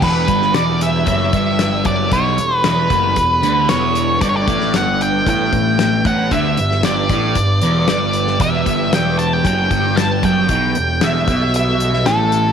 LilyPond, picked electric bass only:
\new Staff \with { instrumentName = "Picked electric bass" } { \clef bass \time 4/4 \key e \minor \tempo 4 = 115 e,,8 g,,8 e,,4 fis,,8 g,,4 fis,,8 | b,,8 e,,8 e,,8 fis,,8 e,,8 d,8 e,,4 | g,,8 a,,8 g,,4 a,,8 a,,4 a,,8 | d,8 g,,8 g,,8 a,,8 g,,8 e,,8 g,,4 |
e,,8 g,,8 e,,4 fis,,8 g,,4 fis,,8 | b,,8 e,,8 e,,8 b,,4. a,,4 | }